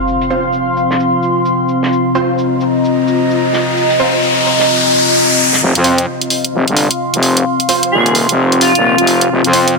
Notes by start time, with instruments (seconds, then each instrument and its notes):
Already playing: ambient pad C4 F4 F5 C6
0.08 shaker
0.21 closed hi-hat
0.30 synth stab C4 F4 C5, shaker
0.53 shaker
0.77 shaker
0.91 snare
1.00 shaker
1.23 shaker
1.45 shaker
1.69 shaker
1.83 snare
1.92 ambient pad G5, riser, shaker
2.07 ambient pad A#5
2.15 synth stab C4 F4 C5, ambient pad D#5, shaker
2.38 shaker
2.61 shaker
2.85 shaker
3.07 shaker
3.31 shaker
3.53 snare, shaker
3.77 shaker
3.90 closed hi-hat
4.00 synth stab C4 F4 C5, shaker
4.22 shaker
4.46 shaker
4.59 snare
4.69 shaker
4.92 shaker
5.15 shaker
5.38 shaker
5.53 snare
5.61 fm bass F1, ambient pad C4 F4 F5
5.75 fm bass F2, ambient pad F5, closed hi-hat
5.84 synth stab C4 F4 C5, open hi-hat
5.95 ambient pad F4 C6, closed hi-hat
6.21 closed hi-hat
6.30 open hi-hat
6.44 closed hi-hat
6.53 fm bass F1
6.68 fm bass G1, closed hi-hat
6.77 open hi-hat
6.91 closed hi-hat
7.14 fm bass F1, closed hi-hat
7.23 open hi-hat
7.37 closed hi-hat
7.60 closed hi-hat
7.69 synth stab C4 F4 C5, open hi-hat
7.83 closed hi-hat
7.92 fm bass D#1, digital synth lead G#4
8.06 closed hi-hat
8.15 open hi-hat
8.29 fm bass F1, closed hi-hat
8.52 closed hi-hat
8.61 digital synth lead F4, open hi-hat
8.75 fm bass D#1, closed hi-hat
8.98 fm bass F1, closed hi-hat
9.07 open hi-hat
9.21 closed hi-hat
9.30 fm bass F1
9.44 fm bass F2, closed hi-hat
9.53 synth stab C4 F4 C5, open hi-hat
9.68 closed hi-hat